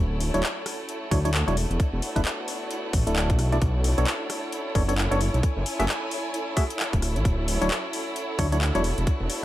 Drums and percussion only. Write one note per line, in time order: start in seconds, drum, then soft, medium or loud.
0.20 open hi-hat loud
0.34 closed hi-hat medium
0.43 clap loud
0.66 cross-stick medium
0.66 open hi-hat medium
0.89 closed hi-hat medium
1.11 kick loud
1.11 open hi-hat loud
1.25 closed hi-hat medium
1.34 clap loud
1.48 closed hi-hat soft
1.57 open hi-hat medium
1.71 closed hi-hat soft
1.80 kick loud
1.80 closed hi-hat medium
2.02 open hi-hat loud
2.16 kick medium
2.16 closed hi-hat medium
2.25 clap loud
2.25 closed hi-hat soft
2.48 open hi-hat medium
2.71 closed hi-hat medium
2.93 kick loud
2.93 open hi-hat loud
3.07 closed hi-hat medium
3.16 clap loud
3.30 kick loud
3.30 closed hi-hat soft
3.39 cross-stick medium
3.39 open hi-hat medium
3.52 closed hi-hat soft
3.62 kick loud
3.62 closed hi-hat medium
3.84 open hi-hat loud
3.98 closed hi-hat medium
4.07 clap loud
4.30 cross-stick medium
4.30 open hi-hat medium
4.52 closed hi-hat medium
4.75 kick loud
4.75 open hi-hat medium
4.89 closed hi-hat medium
4.98 clap loud
5.12 closed hi-hat soft
5.21 open hi-hat medium
5.34 closed hi-hat soft
5.43 kick loud
5.43 closed hi-hat medium
5.66 open hi-hat loud
5.80 closed hi-hat medium
5.89 clap loud
5.89 closed hi-hat soft
6.11 open hi-hat medium
6.34 closed hi-hat medium
6.57 kick loud
6.57 open hi-hat medium
6.70 closed hi-hat medium
6.80 clap loud
6.93 kick medium
6.93 closed hi-hat medium
7.02 cross-stick soft
7.02 open hi-hat medium
7.16 closed hi-hat soft
7.25 kick loud
7.25 closed hi-hat medium
7.48 open hi-hat loud
7.62 closed hi-hat medium
7.71 clap loud
7.93 open hi-hat medium
8.16 closed hi-hat medium
8.39 kick loud
8.39 open hi-hat loud
8.52 closed hi-hat medium
8.61 clap loud
8.75 closed hi-hat medium
8.84 open hi-hat medium
8.98 closed hi-hat soft
9.07 kick loud
9.07 closed hi-hat medium
9.30 open hi-hat loud